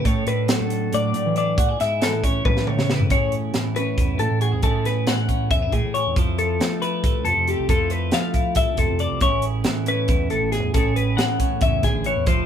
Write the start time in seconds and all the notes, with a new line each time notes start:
Already playing: C#4
0.05 A2 A4 C#5, kick, closed hi-hat
0.27 A2 D4 B4, closed hi-hat
0.48 F#3 A4, snare, closed hi-hat
0.60 A2
0.70 closed hi-hat
0.93 A2 D5, closed hi-hat
1.14 A2, closed hi-hat
1.26 E3
1.36 D4 D5, closed hi-hat
1.58 A2 F#4, kick, closed hi-hat
1.69 G#4
1.80 G#2 E4 E5, snare, closed hi-hat
2.01 E3 A4, snare, closed hi-hat
2.14 A2
2.24 C#4 C#5, kick, closed hi-hat
2.45 A2 B4, kick, high tom
2.57 snare
2.67 A2 C#5, mid tom
2.77 C#3, snare
2.90 E4 B4, snare
3.00 floor tom
3.10 A2 C#4 E4 G#4 C#5, kick, closed hi-hat
3.32 closed hi-hat
3.54 A2 E3, snare, closed hi-hat
3.76 C#4 B4, closed hi-hat
3.98 E2 E4, kick, closed hi-hat
4.19 A2 A4, closed hi-hat
4.31 A2
4.41 F#4 G#4, closed hi-hat
4.52 E2 G#4
4.63 A2 C#4 E4 G#4 A4, kick, closed hi-hat
4.85 B4, snare, closed hi-hat
5.07 A2 E3 F#5, snare, closed hi-hat
5.28 C#4, kick, closed hi-hat
5.50 E2 C#4 E5, kick, closed hi-hat
5.62 E4
5.72 A2 G#4, kick, closed hi-hat
5.85 A2
5.94 G#4 C#5, closed hi-hat
6.07 E2
6.16 F2 F3 E4 A4 C5, kick, closed hi-hat
6.38 A4, closed hi-hat
6.60 F3 A3, snare, closed hi-hat
6.82 E4 B4, closed hi-hat
7.04 C2 A4, kick, closed hi-hat
7.25 F2 C3 A4, closed hi-hat
7.36 F2
7.48 G4 A4, closed hi-hat
7.59 C2
7.69 F2 F3 E4 A4, kick, closed hi-hat
7.90 B4, closed hi-hat
8.12 F3 A3 F5, snare, closed hi-hat
8.34 E4, kick, closed hi-hat
8.55 C2 A4 E5, kick, closed hi-hat
8.77 F2 C3 A4, kick, closed hi-hat
8.90 F2
8.99 A4 D5, closed hi-hat
9.11 C2
9.21 A1 A2 C#4 E4 G#4 C#5, kick, closed hi-hat
9.42 closed hi-hat
9.64 A2 E3, snare, closed hi-hat
9.86 C#4 B4, closed hi-hat
10.08 E2 E4, kick, closed hi-hat
10.30 A1 A2 A4, closed hi-hat
10.42 A1
10.52 G#4, snare, closed hi-hat
10.63 E2
10.74 A1 A2 C#4 E4 G#4 A4, kick, closed hi-hat
10.96 B4, closed hi-hat
11.17 A2 E3 F#5, snare, closed hi-hat
11.40 C#4, kick, closed hi-hat
11.61 E2 C#3 E5, kick, closed hi-hat
11.83 A1 D3 G#4, kick, snare, closed hi-hat
11.94 A1
12.04 E3 C#5, closed hi-hat
12.17 E2
12.26 F1 F3 E4 A4 C5, kick, closed hi-hat